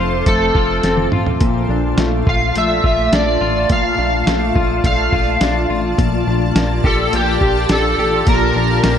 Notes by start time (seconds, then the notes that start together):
Already playing: F1 F2 A3 C4 F4 A4 C5 D6
0.00 F4
0.26 F1 A3 A4, kick, closed hi-hat
0.55 F1 F4, kick
0.83 F1 C4, snare, closed hi-hat
0.97 high tom
1.12 A1 F4, mid tom
1.26 floor tom
1.40 A#1 A#2 A3 D5 A5, kick, closed hi-hat
1.69 A#1 D4
1.98 A#1 A3, snare, closed hi-hat
2.27 A#1 F4 F5, kick
2.55 A#1 A3 E5, closed hi-hat
2.84 A#1 F4 E5, kick
3.12 A#1 D4 D5, snare, closed hi-hat
3.41 A1 F4
3.69 A#1 A#2 F5, kick, closed hi-hat
3.98 A#1 D4
4.27 A#1 A3, snare, closed hi-hat
4.56 A#1 F4, kick
4.84 A#1 A3 F5, kick, closed hi-hat
5.12 A#1 F4, kick
5.41 A#1 D4, snare, closed hi-hat
5.69 A1 F4
5.98 A#1 A#2 G4, kick, closed hi-hat
6.27 A#1 D4
6.56 A#1 A#3, snare, closed hi-hat
6.84 A#1 G4 A4, kick
7.13 A#1 A#3 G4, closed hi-hat
7.41 A#1 G4, kick
7.69 A#1 D4 A4, snare, closed hi-hat
7.98 A1 G4
8.27 A#1 A#2 A#4, kick, closed hi-hat
8.56 A#1 D4
8.84 A#1 A#3, snare, closed hi-hat